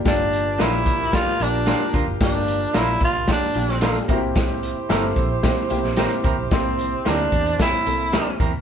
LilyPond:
<<
  \new Staff \with { instrumentName = "Horn section" } { \time 4/4 \key g \dorian \tempo 4 = 111 <f g' bes'>1~ | <f g' bes'>2. r8 <e' g' c''>8~ | <e' g' c''>1~ | <e' g' c''>2. r4 | }
  \new Staff \with { instrumentName = "Clean electric guitar" } { \time 4/4 \key g \dorian r4 <d' f' bes'>16 r4. r16 <d' f' bes'>16 r16 <d' f' bes'>8 | r4 <d' f' bes'>16 r4. r16 <d' f' bes'>16 r16 <c' e' bes'>8 | r4 <c' e' bes'>16 r4. r16 <c' e' bes'>16 r16 <c' e' bes'>8 | r4 <c' e' bes'>16 r4. r16 <c' e' bes'>16 r16 <c' e' bes'>8 | }
  \new Staff \with { instrumentName = "Tenor saxophone" } { \time 4/4 \key g \dorian d'4 e'4 f'8 d'4 r8 | d'4 e'8 f'8 d'4. r8 | r1 | c'4 d'4 e'4. r8 | }
  \new Staff \with { instrumentName = "Upright piano" } { \time 4/4 \key g \dorian <bes d' f' g'>8 r8 <f bes d' g'>8 r8 <bes d' f' g'>8 <bes d' f' g'>8 <bes d' f' g'>8 r8 | <bes d' f' g'>8 r8 <bes d' f' bes'>8 r8 <bes d' f' g'>8 <bes d' f' g'>8 <bes d' f' a'>8 <bes c' e' fis' g'>8~ | <bes c' e' fis' g'>8 r8 <bes c' e' a'>8 r8 <bes c' e' g'>8 <bes c' e' g'>8 <bes c' e' g'>8 r8 | <bes c' e' g'>8 r8 <bes c' e' g'>8 r8 <bes c' e' g'>8 <bes c' e' a'>8 <bes c' e' g'>8 r8 | }
  \new Staff \with { instrumentName = "Fingered electric bass" } { \clef bass \time 4/4 \key g \dorian g,,4 bes,,8 c,8 r8 bes,,8. r16 d,16 fis,,16 | g,,4 bes,,8 c,8 r8 bes,,4 c,8~ | c,4 g,,8 bes,,8. r16 c,16 bes,,8 r16 d,16 b,,16 | c,4 d,8 e,8 r8 c,8. r16 e,16 cis,16 | }
  \new DrumStaff \with { instrumentName = "Drums" } \drummode { \time 4/4 <hh bd sn>8 hh8 <hh sn>8 <hh bd>8 <hh bd sn>8 hh8 <hh sn>8 <hh bd>8 | <hh bd sn>8 hh8 <hh sn>8 <hh bd>8 <hh bd sn>8 hh16 sn16 <hh sn>16 hh16 <hh bd>8 | <hh bd sn>8 hh8 <hh sn>8 <hh bd>8 <hh bd sn>8 hh16 sn16 <hh sn>16 hh16 <hh bd>8 | <hh bd sn>8 hh8 <hh sn>8 <hh bd>16 hh16 <hh bd sn>8 hh8 <hh sn>8 <hh bd>8 | }
>>